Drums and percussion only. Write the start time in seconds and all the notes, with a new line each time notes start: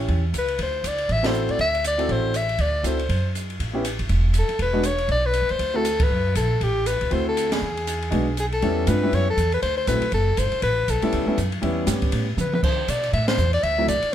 0.08 kick, ride
0.34 hi-hat pedal, ride
0.48 ride
0.59 kick, ride
0.84 hi-hat pedal, ride
0.98 ride
1.09 kick, ride
1.24 snare, ride
1.33 hi-hat pedal
1.49 ride
1.59 kick, ride
1.75 ride
1.84 hi-hat pedal, ride
1.99 ride
2.09 kick, ride
2.34 hi-hat pedal, ride
2.49 ride
2.58 kick, ride
2.84 hi-hat pedal, ride
2.99 ride
3.09 kick, ride
3.35 hi-hat pedal, ride
3.50 ride
3.60 kick, ride
3.85 hi-hat pedal, ride
3.99 ride
4.09 kick, ride
4.34 hi-hat pedal, ride
4.49 ride
4.59 kick, ride
4.83 hi-hat pedal, ride
4.98 ride
5.08 kick, ride
5.33 hi-hat pedal, ride
5.49 ride
5.59 kick, ride
5.85 hi-hat pedal, ride
6.00 kick, ride
6.35 hi-hat pedal, ride
6.61 kick, ride
6.86 hi-hat pedal, ride
7.01 ride
7.11 kick, ride
7.37 hi-hat pedal, ride
7.52 snare, ride
7.77 ride
7.87 hi-hat pedal, ride
8.02 ride
8.12 kick, ride
8.37 hi-hat pedal, ride
8.52 ride
8.62 kick, ride
8.87 kick, hi-hat pedal, ride
9.13 kick, ride
9.37 kick, hi-hat pedal, ride
9.52 ride
9.62 kick, ride
9.87 kick, hi-hat pedal, ride
10.02 ride
10.12 kick, ride
10.37 kick, hi-hat pedal, ride
10.52 ride
10.62 kick, ride
10.88 kick, hi-hat pedal, ride
11.02 ride
11.12 kick, ride
11.38 kick, hi-hat pedal, ride
11.52 ride
11.63 kick, ride
11.87 kick, snare, hi-hat pedal, ride
12.02 kick, ride
12.12 kick, ride
12.38 hi-hat pedal, high tom
12.53 high tom
12.63 kick, crash
12.88 kick, hi-hat pedal, ride
13.03 ride
13.13 kick, ride
13.28 snare, ride
13.38 hi-hat pedal
13.53 ride
13.63 kick, ride
13.88 kick, hi-hat pedal, ride
14.02 ride